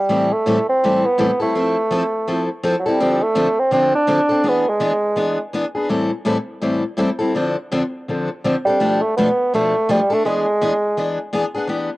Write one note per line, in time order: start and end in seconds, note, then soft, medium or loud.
0.00 0.35 G3 medium
0.09 0.30 A2 medium
0.09 0.30 E3 medium
0.09 0.30 G3 medium
0.09 0.31 C4 medium
0.09 0.31 E4 medium
0.09 0.31 A4 medium
0.33 0.69 A3 medium
0.46 0.57 A2 medium
0.46 0.57 E3 medium
0.46 0.58 G3 medium
0.46 0.57 C4 medium
0.46 0.58 E4 medium
0.46 0.58 A4 medium
0.69 1.06 C4 loud
0.84 1.04 A2 medium
0.84 1.04 E3 medium
0.84 1.04 G3 medium
0.84 1.04 C4 medium
0.84 1.04 E4 medium
0.84 1.04 A4 medium
1.05 1.41 B3 medium
1.18 1.29 A2 medium
1.18 1.29 E3 medium
1.18 1.30 G3 medium
1.18 1.30 C4 medium
1.18 1.30 E4 medium
1.18 1.30 A4 medium
1.40 1.55 G3 soft
1.40 2.46 A3 medium
1.40 1.54 C4 soft
1.40 1.54 E4 medium
1.40 1.54 A4 medium
1.55 1.75 F3 medium
1.55 1.76 C4 medium
1.55 1.76 E4 medium
1.55 1.76 A4 medium
1.91 2.02 F3 medium
1.91 2.02 C4 medium
1.91 2.02 E4 medium
1.91 2.02 A4 medium
2.28 2.48 F3 medium
2.28 2.48 C4 medium
2.28 2.48 E4 medium
2.28 2.49 A4 medium
2.63 2.74 F3 medium
2.63 2.74 C4 medium
2.63 2.75 E4 medium
2.63 2.75 A4 medium
2.80 2.89 F#3 medium
2.86 3.24 G3 medium
2.86 2.99 C4 medium
2.86 3.00 E4 medium
2.86 2.99 A4 medium
3.00 3.20 D3 medium
3.00 3.20 F3 medium
3.00 3.20 C4 medium
3.00 3.21 D4 medium
3.00 3.21 A4 medium
3.22 3.61 A3 loud
3.35 3.46 D3 medium
3.35 3.46 F3 medium
3.35 3.46 C4 medium
3.35 3.47 D4 medium
3.35 3.47 A4 medium
3.60 3.73 C4 medium
3.71 3.92 D3 medium
3.71 3.92 F3 medium
3.71 3.92 C4 medium
3.71 3.93 C4 loud
3.71 3.93 D4 medium
3.71 3.93 A4 medium
3.95 4.50 D4 loud
4.07 4.19 D3 medium
4.07 4.19 F3 medium
4.07 4.19 C4 medium
4.07 4.19 D4 medium
4.07 4.19 A4 medium
4.29 4.43 C4 soft
4.29 4.43 D4 soft
4.29 4.43 A4 medium
4.44 4.64 E3 medium
4.44 4.65 B3 medium
4.44 4.65 D4 medium
4.44 4.65 G#4 medium
4.49 4.71 B3 medium
4.70 5.40 G#3 medium
4.80 4.91 E3 medium
4.80 4.92 B3 medium
4.80 4.92 D4 medium
4.80 4.92 G#4 medium
5.16 5.37 E3 medium
5.16 5.37 B3 medium
5.16 5.37 D4 medium
5.16 5.37 G#4 medium
5.53 5.64 E3 medium
5.53 5.64 B3 medium
5.53 5.65 D4 medium
5.53 5.65 G#4 medium
5.75 5.90 B3 soft
5.75 5.89 D4 medium
5.75 5.89 G#4 medium
5.89 6.10 A2 medium
5.89 6.10 E3 medium
5.89 6.10 G3 medium
5.89 6.10 C4 medium
5.89 6.10 E4 medium
5.89 6.10 A4 medium
6.25 6.36 A2 medium
6.25 6.36 E3 medium
6.25 6.37 G3 medium
6.25 6.37 C4 medium
6.25 6.37 E4 medium
6.25 6.37 A4 medium
6.62 6.82 A2 medium
6.62 6.83 E3 medium
6.62 6.82 G3 medium
6.62 6.83 C4 medium
6.62 6.83 E4 medium
6.62 6.83 A4 medium
6.97 7.08 A2 medium
6.97 7.09 E3 medium
6.97 7.09 G3 medium
6.97 7.09 C4 medium
6.97 7.09 E4 medium
6.97 7.09 A4 medium
7.19 7.34 G3 soft
7.19 7.34 C4 medium
7.19 7.34 E4 medium
7.19 7.33 A4 medium
7.35 7.55 D3 medium
7.35 7.55 F3 medium
7.35 7.55 C4 medium
7.35 7.56 D4 medium
7.35 7.56 A4 medium
7.72 7.82 D3 medium
7.72 7.82 F3 medium
7.72 7.82 C4 medium
7.72 7.82 D4 medium
7.72 7.82 A4 medium
8.08 8.28 D3 medium
8.08 8.28 F3 medium
8.08 8.28 C4 medium
8.08 8.29 D4 medium
8.08 8.29 A4 medium
8.44 8.54 D3 medium
8.44 8.55 F3 medium
8.44 8.55 C4 medium
8.44 8.55 D4 medium
8.44 8.55 A4 medium
8.65 9.03 G3 medium
8.65 8.80 D4 soft
8.65 8.80 A4 medium
8.69 8.80 C4 medium
8.80 9.00 B2 medium
8.80 9.00 F3 medium
8.80 9.00 A3 medium
8.80 9.01 D4 medium
8.80 9.01 A4 medium
9.02 9.16 A3 medium
9.17 9.27 B2 medium
9.17 9.27 F3 medium
9.17 9.28 A3 medium
9.17 9.50 B3 medium
9.17 9.28 D4 medium
9.17 9.28 A4 loud
9.53 9.73 B2 medium
9.53 9.73 F3 medium
9.53 9.73 A3 medium
9.53 9.93 A3 medium
9.53 9.74 D4 medium
9.53 9.74 A4 medium
9.89 9.99 B2 medium
9.89 9.99 F3 medium
9.89 10.15 G3 medium
9.89 9.99 A3 medium
9.89 10.00 D4 medium
9.89 9.99 A4 medium
10.10 10.25 A3 soft
10.10 10.25 A3 medium
10.10 10.24 D4 medium
10.10 10.23 A4 medium
10.25 10.45 E3 medium
10.25 11.29 G#3 medium
10.25 10.45 B3 medium
10.25 10.46 D4 medium
10.25 10.46 G#4 medium
10.62 10.72 E3 medium
10.62 10.72 B3 medium
10.62 10.72 D4 medium
10.62 10.72 G#4 loud
10.97 11.17 E3 medium
10.97 11.18 B3 medium
10.97 11.18 D4 medium
10.97 11.18 G#4 medium
11.33 11.43 E3 medium
11.33 11.44 B3 medium
11.33 11.44 D4 medium
11.33 11.44 G#4 medium
11.54 11.68 B3 medium
11.54 11.68 D4 soft
11.54 11.68 G#4 medium
11.67 11.88 E3 medium
11.67 11.89 B3 medium
11.67 11.89 D4 medium
11.67 11.89 G4 medium